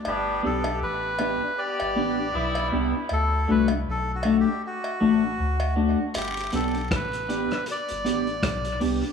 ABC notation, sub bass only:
X:1
M:4/4
L:1/16
Q:"Swing 16ths" 1/4=79
K:G
V:1 name="Sub bass" clef=bass
G,,,2 B,,,2 A,,,3 z2 G,,, A,,,2 B,,,2 C,, z | D,,2 C,,2 B,,,3 z3 A,,,2 D,,3 z | G,,,2 B,,,2 A,,,3 z2 G,,, A,,,2 B,,,2 C,, z |]